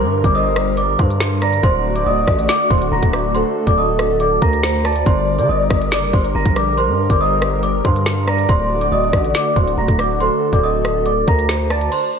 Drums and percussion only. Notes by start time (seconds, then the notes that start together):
0.24 kick, closed hi-hat
0.56 cross-stick, closed hi-hat
0.77 closed hi-hat
0.99 kick
1.10 closed hi-hat
1.20 finger snap, snare
1.42 cross-stick, closed hi-hat
1.53 closed hi-hat
1.63 kick, closed hi-hat
1.96 closed hi-hat
2.27 kick, cross-stick
2.39 closed hi-hat
2.49 finger snap, snare, closed hi-hat
2.71 kick
2.82 closed hi-hat
3.03 kick, closed hi-hat
3.13 cross-stick, closed hi-hat
3.35 closed hi-hat
3.67 kick, closed hi-hat
3.99 cross-stick, closed hi-hat
4.20 closed hi-hat
4.42 kick
4.53 closed hi-hat
4.63 finger snap, snare
4.85 cross-stick, open hi-hat
4.96 closed hi-hat
5.06 kick, closed hi-hat
5.39 closed hi-hat
5.70 kick, cross-stick
5.82 closed hi-hat
5.91 finger snap, snare, closed hi-hat
6.13 kick
6.25 closed hi-hat
6.46 kick, closed hi-hat
6.56 cross-stick, closed hi-hat
6.78 closed hi-hat
7.10 kick, closed hi-hat
7.42 cross-stick, closed hi-hat
7.63 closed hi-hat
7.85 kick
7.96 closed hi-hat
8.06 finger snap, snare
8.27 cross-stick, closed hi-hat
8.38 closed hi-hat
8.49 kick, closed hi-hat
8.81 closed hi-hat
9.13 kick, cross-stick
9.25 closed hi-hat
9.34 finger snap, snare, closed hi-hat
9.56 kick
9.68 closed hi-hat
9.88 kick, closed hi-hat
9.99 cross-stick, closed hi-hat
10.20 closed hi-hat
10.53 kick, closed hi-hat
10.85 cross-stick, closed hi-hat
11.06 closed hi-hat
11.28 kick
11.39 closed hi-hat
11.49 finger snap, snare
11.70 cross-stick, open hi-hat
11.81 closed hi-hat
11.92 closed hi-hat, crash